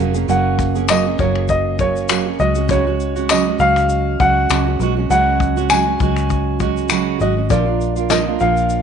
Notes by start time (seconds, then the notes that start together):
Already playing: F#3 F#5
0.00 F1 A#3 C#4 G#4
0.14 A#3 C#4 G#4, shaker
0.28 F#1 F#3 A#3 C#4 G#4 F#5, shaker
0.59 kick, shaker
0.75 A#3 C#4 G#4, shaker
0.88 F#3 A#3 C#4 G#4 D#5, finger snap, tambourine, shaker
1.05 A#3 C#4 G#4
1.19 F#1 F#3 A#3 C#4 G#4 C#5, kick, shaker
1.35 finger snap
1.48 D#5, kick, shaker
1.79 F#3 A#3 C#4 G#4 C#5, kick, shaker
1.96 shaker
2.09 F#3 A#3 C#4 G#4, finger snap, tambourine, shaker
2.26 A#3 C#4 G#4
2.39 C#2 F#3 G#3 C#4 F#4 D#5, shaker
2.55 G#3 C#4 F#4, shaker
2.69 C#3 F#3 G#3 C#4 F#4 C#5, kick, shaker
2.87 G#3 C#4 F#4
3.00 shaker
3.16 G#3 C#4 F#4, shaker
3.29 C#3 F#3 G#3 C#4 F#4 D#5, finger snap, tambourine, shaker
3.46 G#3 F#4
3.58 C#2 F#3 G#3 C#4 F#4 F5, shaker
3.76 finger snap, shaker
3.89 shaker
4.19 C#2 F#3 G#3 C#4 F#4 F#5, kick, shaker
4.50 C#2 C#3 F#3 G#3 C#4 F#4, finger snap, tambourine, shaker
4.67 G#3 C#4 F#4
4.80 B1 F#3 G#3 C#4 F#4, shaker
4.96 G#3 C#4 F#4
5.10 C#2 C#3 F#3 G#3 C#4 F#4 F#5, shaker
5.40 kick, shaker
5.57 G#3 C#4 F#4, shaker
5.70 C#3 F#3 G#3 C#4 F#4 G#5, finger snap, tambourine, shaker
5.87 G#3 C#4 F#4
6.00 C#2 F#3 G#3 C#4 F#4, kick, shaker
6.16 finger snap, shaker
6.30 kick, shaker
6.60 F#3 G#3 C#4 F#4, kick, shaker
6.77 shaker
6.89 C#3 F#3 G#3 C#4 F#4, finger snap, tambourine, shaker
7.20 G#1 F#3 G#3 C#4 F#4 D#5, shaker
7.37 G#3 C#4 F#4
7.49 A#1 A#2 F3 A#3 D4 F4 D5, kick, shaker
7.66 A#3 D4 F4
7.81 shaker
7.96 A#3 D4 F4, shaker
8.10 A#2 F3 A#3 D4 F4 D#5, snare, tambourine, shaker
8.26 A#3 D4 F4
8.40 A#1 F3 A#3 D4 F4 F5, shaker
8.57 shaker
8.70 shaker